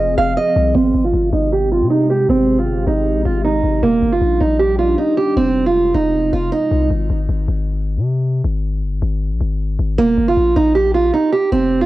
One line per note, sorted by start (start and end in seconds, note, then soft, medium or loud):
0.00 0.16 F1 loud
0.00 0.74 F3 medium
0.00 0.74 C4 medium
0.00 0.74 G#4 medium
0.00 0.15 D#5 medium
0.18 0.36 F1 loud
0.18 0.34 F5 medium
0.37 0.73 D#5 medium
0.56 0.74 C2 loud
0.75 0.94 G#1 loud
0.75 3.80 C3 medium
0.75 3.80 G#3 medium
0.75 1.03 C4 loud
0.75 3.80 G4 medium
0.94 1.13 G#1 loud
1.04 1.31 F4 medium
1.14 1.32 G#1 loud
1.33 1.83 G#1 loud
1.33 1.49 D#4 medium
1.52 1.68 G4 medium
1.72 1.88 F4 medium
1.81 2.27 C3 medium
1.90 2.06 D#4 medium
2.10 2.26 G4 medium
2.29 2.69 G#1 loud
2.29 2.57 C4 loud
2.58 2.85 F4 medium
2.67 2.79 G1 medium
2.78 2.86 G#1 medium
2.87 3.18 G#1 loud
2.87 3.23 D#4 medium
3.16 3.25 A#1 loud
3.25 3.62 G#1 loud
3.25 3.41 F4 medium
3.44 3.81 D#4 medium
3.64 3.82 G#1 loud
3.83 4.01 D#1 loud
3.83 5.35 G3 medium
3.83 4.11 A#3 loud
3.83 5.35 D4 medium
3.83 5.35 D#4 medium
4.02 4.21 G1 loud
4.13 4.39 F4 medium
4.21 4.40 A#1 loud
4.41 4.96 A#1 loud
4.41 4.57 D#4 medium
4.60 4.76 G4 medium
4.79 4.95 F4 medium
4.98 5.14 D#4 medium
5.17 5.34 G4 medium
5.36 5.92 F1 loud
5.36 6.89 C3 medium
5.36 6.89 G#3 medium
5.36 5.64 C4 loud
5.36 6.89 F4 medium
5.66 5.93 F4 medium
5.94 6.31 F1 loud
5.94 6.31 D#4 medium
6.33 6.51 F1 loud
6.33 6.49 F4 medium
6.52 6.88 D#4 medium
6.71 6.90 C2 loud
6.90 7.09 G#1 loud
7.10 7.28 G#1 loud
7.29 7.47 G#1 loud
7.48 7.98 G#1 loud
7.97 8.42 C3 medium
8.44 8.84 G#1 loud
8.83 8.95 G1 loud
8.93 9.02 G#1 loud
9.02 9.33 G#1 loud
9.32 9.40 A#1 loud
9.41 9.78 G#1 loud
9.79 9.97 G#1 loud
9.98 10.17 D#1 loud
9.98 10.26 A#3 loud
10.18 10.36 G1 loud
10.28 10.54 F4 medium
10.37 10.55 A#1 loud
10.56 11.11 A#1 loud
10.56 10.72 D#4 medium
10.75 10.91 G4 medium
10.94 11.10 F4 medium
11.14 11.30 D#4 medium
11.32 11.49 G4 medium
11.52 11.86 F1 loud
11.52 11.80 C4 loud
11.81 11.86 F4 medium